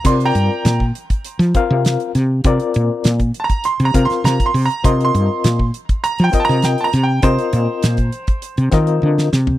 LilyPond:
<<
  \new Staff \with { instrumentName = "Grand piano" } { \time 4/4 \key c \minor \tempo 4 = 100 \tuplet 3/2 { c'''8 <g'' bes''>4~ } <g'' bes''>8 r2 r8 | r4 \tuplet 3/2 { r4 <a'' bes''>8 c'''8 bes''8 c'''8 bes''8 c'''8 bes''8 } | \tuplet 3/2 { c'''8 c'''4~ } c'''8 r8 \tuplet 3/2 { bes''8 g''8 <a'' bes''>8 g''8 <a'' bes''>8 g''8 } | c''2. r4 | }
  \new Staff \with { instrumentName = "Reed electric piano" } { \time 4/4 \key c \minor <c' f' bes' d''>4 r4. <c' f' bes' f''>4 r8 | <c' f' bes' d''>4 r4. <c' f' bes' f''>4 r8 | <c' f' bes' ees''>4 r4. <c' f' bes' ees''>4 r8 | <c' f' bes' ees''>4 r4. <c' f' bes' ees''>4 r8 | }
  \new Staff \with { instrumentName = "Fretless electric bass" } { \clef bass \time 4/4 \key c \minor c8 g,16 r16 bes,8 r8. f16 r16 c8 r16 c8 | c16 r16 bes,16 r16 bes,8 r8. c16 c16 r16 c16 r16 c16 r16 | c8 g,16 r16 bes,8 r8. f16 r16 c8 r16 c8 | c16 r16 bes,16 r16 bes,8 r8. c16 ees8 d8 c8 | }
  \new DrumStaff \with { instrumentName = "Drums" } \drummode { \time 4/4 <cymc hh bd>16 hh16 hh8 <hh sn>16 bd16 hh16 <hh bd>16 hh16 <hh sn>16 <hh bd>8 <hh sn>16 hh16 <hh sn>8 | <hh bd>16 hh16 hh8 <hh sn>16 <hh bd>16 hh16 <hh bd>16 hh16 hh16 <hh bd>16 <hh sn>16 <hh sn>16 <hh bd>16 hho16 hh16 | <hh bd>16 hh16 hh8 <hh sn>16 bd16 hh16 <hh bd>16 hh16 hh16 <hh bd>16 sn16 <hh sn>16 hh16 <hh sn>8 | <hh bd>16 hh16 hh8 <hh sn>16 <hh bd>16 hh16 <hh bd>16 hh16 hh16 <hh bd sn>16 hh16 tommh16 sn16 sn16 tomfh16 | }
>>